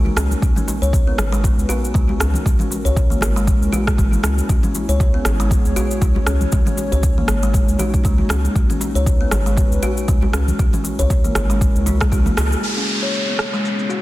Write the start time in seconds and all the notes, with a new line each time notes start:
Already playing: C#4 D#4 F#4 A#4 C#5
0.06 low conga
0.16 C#2 C#4, cross-stick, djembe slap, djembe tone, shaker
0.31 high conga, shaker
0.42 C#2 B3 F#4 B4, kick, djembe tone, shaker
0.56 C#4, high conga, low conga, shaker
0.68 djembe tone, shaker
0.82 C#2 C#5, shaker
0.93 kick, djembe tone, shaker
1.07 B3
1.18 G#1, cross-stick, djembe slap, djembe tone, high conga, shaker
1.32 G#3, shaker
1.44 kick, djembe tone, shaker
1.58 C#2, shaker
1.69 F#4, djembe tone, djembe bass, shaker
1.85 shaker
1.94 C#2 G#3, kick, djembe tone, shaker
2.09 high conga, djembe bass
2.19 C#2 C#4, cross-stick, djembe tone, shaker
2.34 high conga, low conga, shaker
2.46 C#2 G#3 C#4 E4 A#4, kick, djembe tone, shaker
2.59 C#4, high conga, low conga, shaker
2.71 djembe tone, shaker
2.85 C#2 C#5, djembe bass, shaker
2.97 kick, djembe tone, shaker
3.10 A#3, low conga, shaker
3.21 G#1, cross-stick, djembe slap, high conga, djembe tone, shaker
3.36 G#3, shaker
3.47 kick, djembe tone, shaker
3.61 C#2, shaker
3.72 F#4, djembe tone, low conga, djembe bass, shaker
3.87 kick, cross-stick, shaker
3.98 G#1 G#3, kick, djembe tone, shaker
4.12 low conga, shaker
4.23 C#2 C#4, cross-stick, djembe slap, djembe tone, shaker
4.38 high conga, shaker
4.49 C#2 B3 C#4 G#4 C#5, kick, djembe tone, shaker
4.63 C#4, high conga, low conga, shaker
4.75 djembe tone, shaker
4.88 C#2 C#5, shaker
5.00 kick, djembe tone, shaker
5.14 B3
5.25 G#1, cross-stick, djembe slap, djembe tone, high conga, shaker
5.40 G#3, shaker
5.50 kick, djembe tone, shaker
5.65 C#2, shaker
5.76 F#4, djembe tone, djembe bass, shaker
5.91 shaker
6.01 C#2 G#3, kick, djembe tone, shaker
6.16 high conga, djembe bass
6.27 C#2 C#4, cross-stick, djembe tone, shaker
6.41 high conga, low conga, shaker
6.52 C#2 A#3 D#4 F#4, kick, djembe tone, shaker
6.66 C#4, high conga, low conga, shaker
6.77 djembe tone, shaker
6.92 C#2 C#5, djembe bass, shaker
7.03 kick, djembe tone, shaker
7.18 A#3, low conga
7.28 G#1, cross-stick, djembe slap, high conga, djembe tone, shaker
7.43 G#3, shaker
7.53 kick, djembe tone, shaker
7.68 C#2, shaker
7.79 F#4, djembe tone, low conga, djembe bass, shaker
7.94 kick, shaker
8.03 C#2 G#3, kick, djembe tone, shaker
8.18 low conga
8.29 C#2 C#4, cross-stick, djembe slap, djembe tone, shaker
8.45 high conga, shaker
8.55 C#2 B3 B4, kick, djembe tone, shaker
8.70 C#4, high conga, low conga, shaker
8.81 djembe tone, shaker
8.95 C#2 C#5, shaker
9.06 kick, djembe tone, shaker
9.21 B3
9.31 G#1, cross-stick, djembe slap, high conga, djembe tone, shaker
9.46 G#3, shaker
9.56 kick, djembe tone, shaker
9.71 C#2, shaker
9.83 F#4, djembe tone, djembe bass, shaker
9.97 shaker
10.08 C#2 G#3, kick, djembe tone, shaker
10.22 high conga, djembe bass
10.33 C#2 C#4, cross-stick, djembe tone, shaker
10.48 high conga, low conga, shaker
10.58 C#2 G#3 C#4 E4 F#4 A#4, kick, djembe tone, shaker
10.73 C#4, high conga, low conga, shaker
10.84 djembe tone, shaker
10.99 C#2 C#5, djembe bass, shaker
11.10 kick, djembe tone, shaker
11.24 A#3, low conga, shaker
11.35 G#1, cross-stick, djembe slap, high conga, djembe tone, shaker
11.50 G#3, shaker
11.61 kick, djembe tone, shaker
11.75 C#2, shaker
11.86 E4, djembe tone, high conga, low conga, djembe bass, shaker
12.00 G#3, kick, cross-stick, high conga, shaker
12.12 C#2 F#4, kick, djembe tone, shaker
12.26 A#3, low conga, shaker
12.37 C#2 G#4, cross-stick, djembe slap, djembe tone, shaker
12.51 high conga, shaker
12.63 B3 C#4 E4 G#4 C#5, downlifter, shaker
12.77 C#4, shaker
12.88 shaker
13.02 C#5, shaker
13.14 shaker
13.28 B3
13.39 cross-stick, shaker
13.53 G#3, shaker
13.65 shaker
13.79 shaker
13.89 F#4, shaker